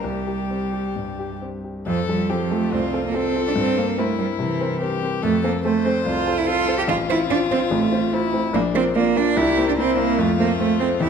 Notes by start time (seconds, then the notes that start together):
0.03 C2 G3 G4
0.27 G4
0.50 C4
0.73 G4
0.96 G2
1.19 G4
1.42 C4
1.64 G4
1.86 F2 F3 A4
2.08 G3 C4 F4 A4
2.30 F3 C4 F4 G4 A4
2.51 A3 C4 F4 A4
2.72 C2 C4 F4
2.93 C4 F4 A4
3.06 A#3
3.14 C4 F4 A4
3.35 C4 F4 A4
3.47 D4
3.56 G2 C4
3.77 A#3 C4 A#4 C5
3.98 A3 C4 E4 A#4 C5
4.18 G3 C4 A#4 C5
4.39 C3 E3
4.60 C4 A#4 C5
4.81 C4 G4 A#4 C5
5.02 C4 A#4 C5
5.23 F2 A3 A4
5.43 A#3 C4 A4 C5
5.64 A3 C4 A4 C5
5.85 C4 A4 C5
6.06 C2 F4
6.27 C4 A4 C5
6.38 E4
6.46 C4 F4 A4 C5
6.68 C4 A4 C5
6.78 G4
6.88 A1 F4
7.09 C4 E4 F4 C5
7.30 C4 D4 F4 C5
7.51 C4 F4 C5
7.71 A1 A3
7.92 C4 F4 C5
8.13 C4 E4 F4 C5
8.33 C4 F4 C5
8.53 A#1 A#3 D4
8.74 A#3 C4 F4 D5
8.95 A#3 D4 F4 D5
9.16 A#3 D4 F4 D5
9.37 C2 E4 G4
9.57 A#3 C4 C5
9.68 D4
9.78 A#3 C4 E4 C5
9.98 A#3 C4 C5
10.18 F2 A3 F4
10.39 A3 A#3 C4 C5
10.59 A3 C4 C5
10.80 A3 C4 C5
11.00 E2 E4 G4